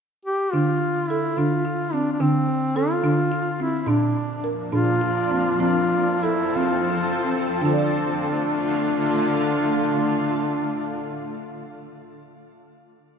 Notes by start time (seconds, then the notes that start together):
0.25 G4
0.53 D3 D4 F4
1.09 E4 A4
1.37 D3 D4 F4
1.65 F4
1.93 C4 D4
2.13 D4
2.20 D3 C4 D4
2.76 F4 A4
3.03 D3 D4
3.32 F4
3.60 C4 E4
3.81 E4
3.86 A#2 F3 A#3 D4
3.90 D4
4.44 A#4
4.72 A#2 D4 F4
5.01 F4
5.31 C4
5.60 F3 C4 F4 A4
6.23 E4 A4
6.56 F3 C4 F4
6.90 F4
7.25 C4
7.61 D3 A3 D4 F4
7.65 F4 A4
7.73 D5